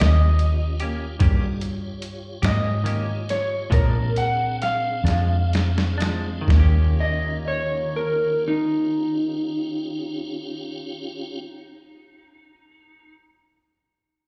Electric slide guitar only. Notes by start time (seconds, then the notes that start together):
0.03 D#5
2.46 D#5
3.30 C#5
3.73 A#4
4.18 F#5
4.62 F5
7.00 D#5
7.48 C#5
7.96 A#4
8.48 D#4